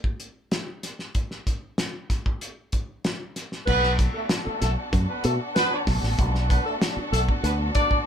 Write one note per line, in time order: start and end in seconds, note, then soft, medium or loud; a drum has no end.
0.04 kick medium
0.20 closed hi-hat medium
0.51 snare medium
0.51 closed hi-hat medium
0.83 snare soft
0.83 closed hi-hat medium
0.99 snare soft
1.15 kick medium
1.15 closed hi-hat medium
1.31 snare soft
1.47 kick medium
1.47 closed hi-hat medium
1.78 snare medium
1.78 closed hi-hat medium
2.10 kick medium
2.10 snare soft
2.10 closed hi-hat medium
2.26 kick medium
2.41 closed hi-hat medium
2.72 kick medium
2.72 closed hi-hat medium
3.04 snare medium
3.04 closed hi-hat medium
3.36 snare soft
3.36 closed hi-hat medium
3.52 snare soft
3.66 4.06 B1 loud
3.66 8.06 B3 medium
3.66 3.92 B3 loud
3.66 8.06 D4 medium
3.66 8.06 F#4 medium
3.66 8.06 A4 medium
3.66 3.92 B4 loud
3.66 kick loud
3.66 crash loud
3.83 snare soft
3.99 kick medium
3.99 closed hi-hat medium
4.14 4.24 A3 medium
4.14 4.24 A4 medium
4.29 snare loud
4.29 closed hi-hat medium
4.45 4.58 A3 medium
4.45 4.58 A4 medium
4.45 muted fingered electric bass stroke soft
4.61 4.75 B1 medium
4.61 4.71 A3 medium
4.61 4.71 A4 medium
4.61 snare soft
4.61 closed hi-hat medium
4.93 5.06 F#2 medium
4.93 kick loud
4.93 closed hi-hat medium
5.09 5.22 B3 medium
5.09 5.22 B4 medium
5.24 5.37 B2 loud
5.24 5.35 A3 medium
5.24 5.34 A4 medium
5.24 closed hi-hat medium
5.56 5.81 B3 loud
5.56 5.81 B4 loud
5.56 snare loud
5.56 closed hi-hat medium
5.87 6.00 B1 medium
5.87 kick loud
5.87 snare soft
5.87 open hi-hat medium
6.03 6.16 A1 medium
6.03 snare soft
6.19 6.57 B1 loud
6.19 kick loud
6.19 closed hi-hat medium
6.35 snare soft
6.50 6.62 B3 medium
6.50 6.62 B4 loud
6.50 kick medium
6.50 closed hi-hat medium
6.65 6.75 A3 medium
6.65 6.75 A4 medium
6.82 snare loud
6.82 closed hi-hat loud
6.97 muted fingered electric bass stroke soft
7.12 7.25 B1 loud
7.12 7.22 A3 medium
7.12 7.22 A4 loud
7.12 closed hi-hat medium
7.29 kick medium
7.43 7.69 D2 loud
7.43 7.53 B3 medium
7.43 7.53 B4 medium
7.43 closed hi-hat medium
7.75 8.00 D4 loud
7.75 8.00 D5 loud
7.75 kick loud
7.75 closed hi-hat medium
7.91 kick medium